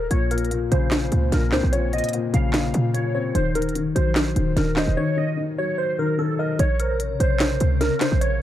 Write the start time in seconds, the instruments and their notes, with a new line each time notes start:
0.10 808-style bass A#1, grand piano A#2, synth keys C#5, closed hi-hat
0.31 grand piano A#2, synth keys A#4, closed hi-hat
0.38 closed hi-hat
0.45 closed hi-hat
0.51 grand piano A#2, closed hi-hat
0.72 808-style bass A#1, grand piano C#3, synth keys C5, closed hi-hat
0.91 snare, clap, closed hi-hat
1.12 808-style bass C#2, grand piano A#2, closed hi-hat
1.32 808-style bass A#1, grand piano A#2, synth keys A#4, snare, closed hi-hat
1.52 808-style bass C#2, grand piano C4, synth keys C5, snare, clap
1.63 808-style bass A#1
1.73 grand piano A#2, synth keys C#5, closed hi-hat
1.93 grand piano A#2, synth keys D#5, closed hi-hat
1.98 closed hi-hat
2.04 closed hi-hat
2.09 closed hi-hat
2.13 grand piano A#2, closed hi-hat
2.34 808-style bass A#1, grand piano C#3, synth keys F5, closed hi-hat
2.53 808-style bass A1, snare, clap, closed hi-hat
2.65 808-style bass A#1
2.74 808-style bass A#2, grand piano A#2, closed hi-hat
2.94 grand piano A#2, synth keys C#5, closed hi-hat
3.15 grand piano C4, synth keys C#5
3.35 808-style bass D#1, grand piano D#3, synth keys C5, closed hi-hat
3.55 grand piano D#3, synth keys A#4, closed hi-hat
3.62 closed hi-hat
3.69 closed hi-hat
3.75 grand piano D#3, closed hi-hat
3.95 808-style bass A#1, grand piano F#3, synth keys C5, closed hi-hat
4.16 snare, clap, closed hi-hat
4.36 808-style bass D#1, grand piano D#3, closed hi-hat
4.57 808-style bass D#1, grand piano D#3, synth keys A#4, snare, closed hi-hat
4.76 synth keys C5, grand piano D#5, snare, clap
4.88 808-style bass D#1
4.97 grand piano D#3, synth keys C#5
5.17 grand piano D#3, synth keys D#5
5.37 grand piano D#3
5.58 grand piano F#3, synth keys C#5
5.78 synth keys C5
5.98 grand piano D#3, synth keys A#4
6.18 grand piano D#3, synth keys A4
6.39 synth keys A#4, grand piano D#5
6.59 808-style bass A#1, ambient pad C3 C#3 A#4, synth keys C#5, closed hi-hat
6.80 synth keys A#4, soft synth lead C5, closed hi-hat
7.00 soft synth lead C#5, closed hi-hat
7.20 808-style bass A#1, synth keys C5, closed hi-hat
7.40 snare, clap, closed hi-hat
7.60 808-style bass C#2, closed hi-hat
7.81 synth keys A#4, snare, closed hi-hat
8.01 synth keys C5, snare, clap, closed hi-hat
8.12 808-style bass A#1
8.21 synth keys C#5, closed hi-hat